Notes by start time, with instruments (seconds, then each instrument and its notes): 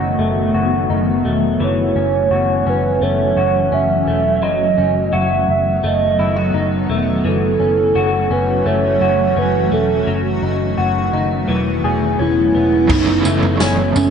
Already playing: picked electric bass F#1, ambient pad D#3 F#3 A3 B3 F#4, clean electric guitar D#3 D#4 F#4
0.19 picked electric bass F#1, clean electric guitar A3
0.54 picked electric bass F#1, clean electric guitar F#4
0.90 picked electric bass F#1, clean electric guitar D#4
1.25 picked electric bass E1, clean electric guitar A3
1.60 picked electric bass F#1, ambient pad E3 F#3 C#4, clean electric guitar E3, soft synth lead C#5
1.96 picked electric bass F#1, clean electric guitar C#4
2.31 picked electric bass F#1, clean electric guitar F#4
2.66 picked electric bass F#1, clean electric guitar C#4, soft synth lead B4
3.01 picked electric bass F#1, clean electric guitar A3, soft synth lead C#5
3.37 picked electric bass F#1, clean electric guitar F#4
3.72 picked electric bass F#1, clean electric guitar C#4, soft synth lead E5
4.08 picked electric bass E1, clean electric guitar A3
4.42 picked electric bass F#1, ambient pad D#3 B3, clean electric guitar F#3, soft synth lead D#5
4.78 picked electric bass F#1, clean electric guitar C#4
5.13 picked electric bass F#1, clean electric guitar F#4, soft synth lead E5
5.49 picked electric bass F#1, soft synth lead E5
5.84 picked electric bass F#1, clean electric guitar A3, soft synth lead D#5
6.18 picked electric bass F#1, clean electric guitar E4
6.36 clean electric guitar F#4
6.54 picked electric bass F#1, clean electric guitar D#4
6.89 picked electric bass E1, clean electric guitar A3
7.24 picked electric bass F#1, clean electric guitar E3, ambient pad E3 A3 C#4 F#4, soft synth lead A4
7.60 picked electric bass F#1, clean electric guitar C#4
7.95 picked electric bass F#1, clean electric guitar F#4
8.30 picked electric bass F#1, clean electric guitar C#4, soft synth lead B4
8.66 picked electric bass F#1, clean electric guitar A3, soft synth lead C#5
9.01 picked electric bass F#1, clean electric guitar F#4
9.37 picked electric bass F#1, clean electric guitar C#4, soft synth lead B4
9.72 picked electric bass E1, clean electric guitar A3, soft synth lead A4
10.07 picked electric bass F#1, ambient pad D#3 A3 B3, clean electric guitar F#3
10.42 picked electric bass F#1, clean electric guitar D#4
10.78 picked electric bass F#1, clean electric guitar F#4
11.13 picked electric bass F#1, clean electric guitar D#4
11.48 picked electric bass E1, ambient pad C#3 E3 G#3 E4, clean electric guitar E3
11.84 picked electric bass E1, clean electric guitar G#4
12.19 picked electric bass E1, clean electric guitar C#4, soft synth lead E4
12.55 picked electric bass E1, clean electric guitar B3
12.87 picked electric bass F#1, overdriven electric guitar F#2 C#3 E3, clean electric guitar E3, soft synth lead D#4, ambient pad F#4 C#5 A5, kick, floor tom, crash
12.92 overdriven electric guitar A3 C#4
13.25 picked electric bass F#1, clean electric guitar A3, tambourine
13.43 floor tom
13.60 picked electric bass F#1, clean electric guitar C#4, snare, tambourine
13.96 picked electric bass F#1, clean electric guitar A3, soft synth lead C#4, floor tom, tambourine